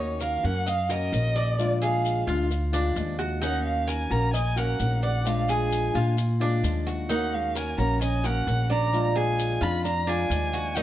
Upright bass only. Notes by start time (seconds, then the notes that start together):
Already playing: D#2
0.44 F#2
1.12 A#1
2.27 D2
2.96 D#2
4.10 A#1
4.80 A#1
5.95 A#2
6.64 D#2
7.78 A#1
8.47 A#1
9.61 F2
10.30 D#2